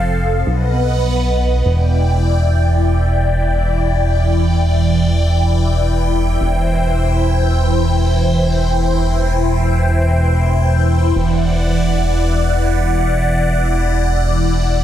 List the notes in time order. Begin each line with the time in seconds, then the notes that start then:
Already playing: F1 F3 C4 A4 F5
0.47 B1 B3 B4 D#5 F#5
1.65 E1 E3 E4 D5 G5
6.41 E1 C5
11.16 E1 D5 F#5